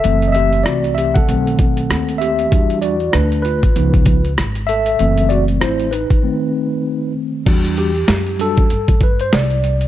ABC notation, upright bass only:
X:1
M:4/4
L:1/16
Q:"Swing 16ths" 1/4=97
K:Em
V:1 name="Upright bass" clef=bass
F,,,4 C,,4 B,,,4 ^D,,4 | E,,4 D,,3 z ^C,,4 ^G,,,4 | F,,,4 A,,,3 z8 z | E,,4 F,,3 z G,,4 C,,4 |]